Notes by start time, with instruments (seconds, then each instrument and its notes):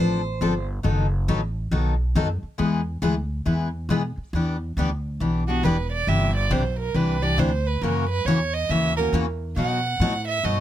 Already playing: upright bass A1, steel-string acoustic guitar C5
0.00 steel-string acoustic guitar F3 C4 D4 A4
0.41 upright bass G1, steel-string acoustic guitar F3 C4 D4 A4
0.83 upright bass F#1, steel-string acoustic guitar D#3 F#3 B3 D#4 A4
1.28 upright bass A1, steel-string acoustic guitar D#3 F#3 B3 D#4 A4
1.71 upright bass B1, steel-string acoustic guitar D#3 F#3 B3 D#4 A4
2.15 upright bass F#2, steel-string acoustic guitar D#3 F#3 B3 D#4 A4
2.43 muted upright bass stroke
2.58 upright bass E2, steel-string acoustic guitar E3 G#3 B3 E4 G#4
3.02 upright bass D2, steel-string acoustic guitar E3 G#3 B3 E4 G#4
3.45 upright bass E2, steel-string acoustic guitar E3 G#3 B3 E4 G#4
3.89 upright bass B2, steel-string acoustic guitar E3 G#3 B3 E4 G#4
4.17 muted upright bass stroke
4.33 upright bass E2, steel-string acoustic guitar E3 B3 D4 G4
4.77 upright bass D2, steel-string acoustic guitar E3 B3 D4 G4
5.20 upright bass B1, steel-string acoustic guitar E3 B3 D4 G4
5.48 steel-string acoustic guitar B3 D4 G4, violin F#4
5.63 upright bass E1, steel-string acoustic guitar E3 B3 D4 G4, violin B4
5.92 violin D5
6.07 upright bass G1, steel-string acoustic guitar C3 E3 D4 G4, violin E5
6.36 violin D5
6.50 upright bass B1, steel-string acoustic guitar C3 E3 D4 G4, violin C5
6.79 violin A#4
6.94 upright bass C2, steel-string acoustic guitar C3 E3 D4 G4, violin B4
7.22 steel-string acoustic guitar E3 D4 G4, violin D5
7.38 upright bass D2, steel-string acoustic guitar C3 E3 D4 G4, violin C5
7.67 violin B4
7.81 upright bass F#2, steel-string acoustic guitar C#3 E3 A#3 C#4 F#4, violin A#4
8.09 violin B4
8.25 upright bass E2, steel-string acoustic guitar C#3 E3 A#3 C#4 F#4, violin C#5
8.54 violin D#5
8.69 upright bass D#2, steel-string acoustic guitar C#3 E3 A#3 C#4 F#4, violin E5
8.97 steel-string acoustic guitar A#3 C#4 F#4, violin A#4
9.13 upright bass E2, steel-string acoustic guitar C#3 E3 A#3 C#4 F#4
9.56 upright bass B2, steel-string acoustic guitar B2 F#3 B3 D#4 F#4, violin F#5
10.00 upright bass A2, steel-string acoustic guitar B2 F#3 B3 D#4 F#4
10.28 violin E5
10.43 upright bass G2, steel-string acoustic guitar B2 F#3 B3 D#4 F#4, violin D#5